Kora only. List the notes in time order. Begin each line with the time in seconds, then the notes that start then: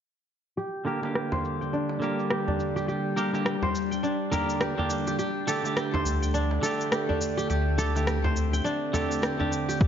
0.57 G4
0.86 A#4
1.15 G4
1.32 C5
1.61 G5
1.73 D4
2.02 A#4
2.31 G4
2.48 D4
2.76 G4
2.88 G4
3.16 A#4
3.45 G4
3.63 C5
3.91 G5
4.03 D4
4.31 A#4
4.60 G4
4.78 D4
5.07 G4
5.19 G4
5.47 A4
5.77 G4
5.94 C5
6.22 G5
6.34 D4
6.63 A4
6.92 G4
7.09 D4
7.37 G4
7.50 G4
7.78 A4
8.07 G4
8.24 C5
8.53 G5
8.64 D4
8.94 A4
9.22 G4
9.40 D4
9.69 G4
9.81 G4